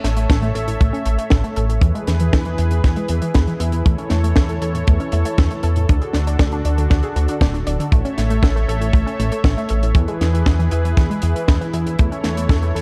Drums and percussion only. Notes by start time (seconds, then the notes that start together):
0.04 snare, closed hi-hat
0.17 closed hi-hat
0.30 kick, snare, closed hi-hat
0.42 closed hi-hat
0.55 closed hi-hat
0.68 closed hi-hat
0.81 kick, closed hi-hat
0.94 closed hi-hat
1.06 closed hi-hat
1.19 closed hi-hat
1.30 kick, snare, closed hi-hat
1.44 closed hi-hat
1.56 closed hi-hat
1.70 closed hi-hat
1.81 kick, closed hi-hat
1.95 closed hi-hat
2.07 snare, closed hi-hat
2.20 closed hi-hat
2.33 kick, snare, closed hi-hat
2.45 closed hi-hat
2.58 closed hi-hat
2.71 closed hi-hat
2.84 kick, snare, closed hi-hat
2.96 closed hi-hat
3.08 closed hi-hat
3.22 closed hi-hat
3.34 kick, snare, closed hi-hat
3.47 closed hi-hat
3.60 closed hi-hat
3.72 closed hi-hat
3.86 kick, closed hi-hat
3.98 closed hi-hat
4.10 snare, closed hi-hat
4.24 closed hi-hat
4.36 kick, snare, closed hi-hat
4.49 closed hi-hat
4.62 closed hi-hat
4.75 closed hi-hat
4.87 kick, closed hi-hat
5.00 closed hi-hat
5.12 closed hi-hat
5.25 closed hi-hat
5.38 kick, snare, closed hi-hat
5.51 closed hi-hat
5.63 closed hi-hat
5.76 closed hi-hat
5.89 kick, closed hi-hat
6.02 closed hi-hat
6.13 snare, closed hi-hat
6.27 closed hi-hat
6.39 kick, snare, closed hi-hat
6.52 closed hi-hat
6.65 closed hi-hat
6.78 closed hi-hat
6.90 kick, snare, closed hi-hat
7.03 closed hi-hat
7.16 closed hi-hat
7.28 closed hi-hat
7.41 kick, snare, closed hi-hat
7.55 closed hi-hat
7.67 closed hi-hat
7.80 closed hi-hat
7.92 kick, closed hi-hat
8.05 closed hi-hat
8.18 snare, closed hi-hat
8.30 closed hi-hat
8.43 kick, snare, closed hi-hat
8.57 closed hi-hat
8.69 closed hi-hat
8.82 closed hi-hat
8.93 kick, closed hi-hat
9.07 closed hi-hat
9.20 closed hi-hat
9.32 closed hi-hat
9.44 kick, snare, closed hi-hat
9.58 closed hi-hat
9.69 closed hi-hat
9.83 closed hi-hat
9.95 kick, closed hi-hat
10.08 closed hi-hat
10.21 snare, closed hi-hat
10.35 closed hi-hat
10.46 kick, snare, closed hi-hat
10.60 closed hi-hat
10.71 closed hi-hat
10.85 closed hi-hat
10.97 kick, snare, closed hi-hat
11.11 closed hi-hat
11.22 closed hi-hat
11.36 closed hi-hat
11.48 kick, snare, closed hi-hat
11.61 closed hi-hat
11.73 closed hi-hat
11.87 closed hi-hat
11.99 kick, closed hi-hat
12.12 closed hi-hat
12.24 snare, closed hi-hat
12.37 closed hi-hat
12.49 kick, snare, closed hi-hat
12.62 closed hi-hat
12.76 closed hi-hat